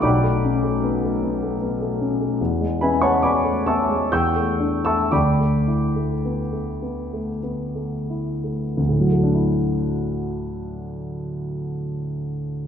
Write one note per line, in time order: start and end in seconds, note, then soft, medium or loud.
0.02 2.35 B1 soft
0.02 1.56 D5 soft
0.02 1.56 G5 soft
0.02 1.57 B5 soft
0.02 1.60 D6 medium
0.23 0.55 A3 soft
0.44 0.75 C#4 soft
0.64 0.95 A3 soft
0.84 1.15 B3 soft
1.04 1.23 A3 soft
1.23 1.54 B3 soft
1.43 1.73 A3 soft
1.62 1.92 B3 soft
1.82 2.12 A3 soft
2.01 2.32 C#4 soft
2.21 2.40 A3 soft
2.41 4.08 E2 soft
2.61 2.93 G#3 soft
2.81 3.15 C#4 soft
2.81 3.01 B4 soft
2.81 3.01 E5 soft
2.81 3.01 G#5 soft
2.81 3.02 B5 medium
3.02 3.36 G#3 soft
3.02 3.22 C#5 soft
3.02 3.21 F#5 soft
3.02 3.22 A5 soft
3.02 3.22 C#6 medium
3.23 3.57 B3 soft
3.23 3.63 D5 soft
3.23 3.63 G#5 soft
3.23 3.63 B5 soft
3.23 3.66 D6 medium
3.44 3.66 A3 soft
3.66 4.02 B3 soft
3.66 4.09 E5 soft
3.66 4.09 A5 medium
3.66 4.09 C#6 soft
3.66 4.11 E6 medium
3.89 4.11 G#3 soft
4.12 5.09 E2 soft
4.12 4.81 G5 medium
4.12 4.81 C#6 medium
4.12 4.82 E6 medium
4.12 4.85 G6 medium
4.36 4.75 A3 soft
4.60 5.01 D4 soft
4.85 5.12 A3 soft
4.85 5.10 E5 soft
4.85 5.11 A5 soft
4.85 5.10 C#6 medium
4.85 5.12 E6 medium
5.12 8.74 D2 soft
5.12 7.39 D5 soft
5.12 7.39 G5 medium
5.12 7.39 B5 soft
5.12 7.42 D6 medium
5.40 5.84 A3 soft
5.67 6.12 E4 soft
5.96 6.41 A3 soft
6.25 6.70 B3 soft
6.52 6.81 A3 soft
6.82 7.30 B3 soft
7.13 7.63 A3 soft
7.43 7.96 B3 soft
7.75 8.30 A3 soft
8.10 8.64 E4 soft
8.44 8.77 A3 soft
8.77 12.67 D2 soft
8.89 12.67 A2 soft
9.00 12.67 F#3 soft
9.12 12.67 A3 soft
9.23 12.67 D4 soft
9.34 12.67 E4 soft